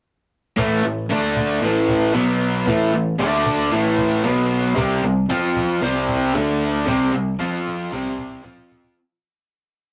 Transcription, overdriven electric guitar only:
0.57 A2 E3 A3
0.83 A2 E3
1.09 D3 A3 D4
1.62 A2 E3 A3
2.13 B2 F#3 B3
2.67 A2 E3 A3
2.93 A2 E3
3.18 D3 A3 D4
3.71 A2 E3 A3
4.24 B2 F#3 B3
4.75 C3 G3 C4
5.04 C3 G3
5.29 F3 C4 F4
5.82 C3 G3 C4
6.35 D3 A3 D4
6.87 C3 G3 C4
7.13 C3 G3
7.39 F3 C4 F4
7.92 C3 G3 C4
8.43 F3 C4 F4

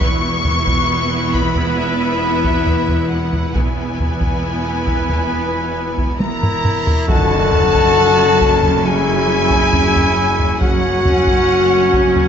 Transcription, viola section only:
0.02 B3 E4
3.54 B3 E4
7.10 F#3 C#4
10.60 F#3 C#4

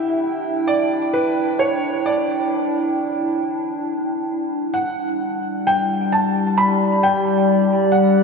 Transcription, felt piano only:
Already playing: E5
0.67 D5
1.13 B4
1.59 C#5
2.06 D5
4.74 F#5
5.67 G5
6.12 A5
6.58 B5
7.03 G5
7.92 F#5

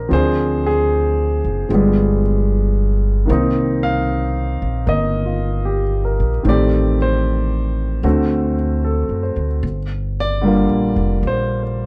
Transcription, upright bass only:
0.11 D2
1.44 F#1
1.70 G1
3.29 C2
4.62 A#1
4.87 G1
6.20 A#1
6.45 A1
8.03 D2
9.09 F#2
9.36 D2
9.63 G1
10.69 A#1
10.96 F1
11.23 A#1

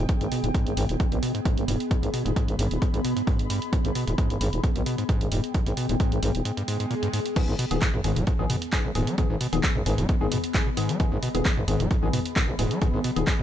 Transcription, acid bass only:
0.09 G#2
0.21 G2
0.32 B2
0.44 G#2
0.55 G#2
0.67 G2
0.77 G2
1.00 G#2
1.12 G2
1.23 B2
1.35 G#2
1.45 G#2
1.57 G2
1.68 G2
1.91 G#2
2.03 G2
2.14 B2
2.25 G#2
2.36 G#2
2.48 G2
2.59 G2
2.82 G#2
2.94 G2
3.05 B2
3.17 G#2
3.27 G#2
3.39 G2
3.50 G2
3.73 G#2
3.85 G2
3.95 B2
4.07 G#2
4.18 G#2
4.30 G2
4.41 G2
4.64 G#2
4.76 G2
4.86 B2
4.98 G#2
5.09 G#2
5.21 G2
5.32 G2
5.55 G#2
5.67 G2
5.77 B2
5.89 G#2
6.00 G#2
6.12 G2
6.23 G2
6.45 G#2
6.57 G2
6.68 G#2
6.80 G#2
6.91 A#2
7.03 G2
7.13 G#2
7.36 G#2
7.48 G#2
7.59 B2
7.82 G#2
7.94 B2
8.04 G#2
8.16 G#3
8.27 G#2
8.39 G#2
8.50 B2
8.73 G#2
8.85 B2
8.95 G#2
9.07 G#3
9.18 G#2
9.30 G#2
9.41 B2
9.64 G#2
9.76 B2
9.86 G#2
9.98 G#3
10.09 G#2
10.21 G#2
10.32 B2
10.54 G#2
10.66 B2
10.77 G#2
10.89 G#3
11.00 G#2
11.12 G#2
11.23 B2
11.45 G#2
11.57 B2
11.68 G#2
11.80 G#3
11.91 G#2
12.03 G#2
12.13 B2
12.36 G#2
12.48 B2
12.59 G#2
12.71 G#3
12.82 G#2
12.94 G#2
13.04 B2
13.27 G#2
13.39 B2

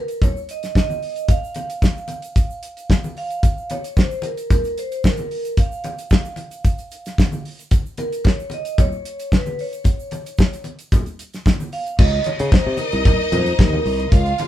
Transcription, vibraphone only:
Already playing: A#4
0.23 C#5
0.51 D#5
0.78 D#5
1.31 F5
3.18 F5
3.71 C#5
3.99 C5
4.25 A#4
4.52 A#4
4.79 C5
5.05 A#4
5.59 F5
7.99 A#4
8.26 C#5
8.54 D#5
8.80 C#5
9.35 B4
9.61 C#5
11.73 F5
11.99 D#5
12.26 C#5
12.52 C5
12.80 A#4
13.07 A#4
13.35 C5
13.60 A#4
14.13 F5

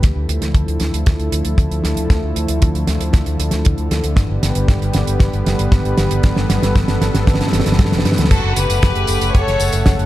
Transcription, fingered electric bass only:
0.04 D2
0.16 D2
0.29 D2
0.42 D2
0.54 D2
0.68 D2
0.81 D2
0.94 D2
1.07 D2
1.19 D2
1.32 D2
1.45 D2
1.58 D2
1.71 D2
1.84 D2
1.97 D2
2.10 D2
2.23 D2
2.36 D2
2.49 D2
2.62 D2
2.75 D2
2.88 D2
3.01 D2
3.14 D2
3.27 D2
3.40 D2
3.52 D2
3.66 D2
3.78 D2
3.91 D2
4.04 D2
4.17 G1
4.30 G1
4.43 G1
4.56 G1
4.68 G1
4.81 G1
4.94 G1
5.07 G1
5.20 G1
5.33 G1
5.46 G1
5.59 G1
5.72 G1
5.85 G1
5.98 G1
6.11 G1
6.24 G1
6.37 G1
6.50 G1
6.63 G1
6.76 G1
6.88 G1
7.01 G1
7.14 G1
7.27 G1
7.40 G2
7.53 G1
7.66 G1
7.79 G2
7.92 F1
8.05 G2
8.18 D2
8.31 F#1
8.44 F#1
8.57 F#1
8.70 F#1
8.83 F#1
8.96 F#1
9.09 F#1
9.21 F#1
9.35 F#1
9.47 F#1
9.60 F#1
9.73 F#1
9.87 F#1
9.99 F#1

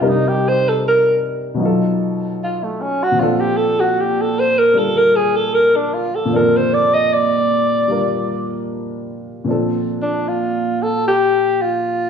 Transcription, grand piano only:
0.01 C3 G3 D4 D#4 A#4
1.54 B2 F#3
1.60 D#4 F4
1.65 A4
3.11 A#2 F3
3.17 C4 D4
3.23 A4
4.74 G3 D4 F4 A#4
6.25 A#2 F3
6.31 C4 D4
6.36 A4
7.88 G3 D4 F4 A#4
9.45 A#2 F3 C4 D4
9.51 A4

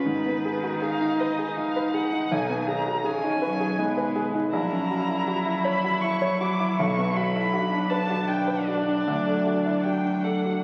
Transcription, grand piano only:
0.06 G#2
0.26 B3
0.45 G#4
0.63 F#4
0.82 G#4
1.01 D#4
1.20 B4
1.39 G#4
1.57 D#4
1.76 B4
1.94 G#4
2.13 D#4
2.32 B1
2.50 B3
2.68 G#4
2.87 F#4
3.05 G#4
3.23 D#4
3.42 B4
3.60 G#4
3.78 D#4
3.97 B4
4.16 G#4
4.35 D#4
4.53 A#1
4.72 C#4
4.91 F#4
5.09 E4
5.28 F#4
5.46 E4
5.65 C#5
5.84 F#4
6.03 E4
6.22 C#5
6.41 F#4
6.60 E4
6.79 B1
6.98 B3
7.17 F#4
7.35 E4
7.54 F#4
7.72 D4
7.91 B4
8.09 F#4
8.29 D4
8.47 B4
8.68 F#4
8.88 D4
9.08 D2
9.27 A3
9.47 F#4
9.66 E4
9.85 F#4
10.05 D4
10.24 A4
10.45 F#4

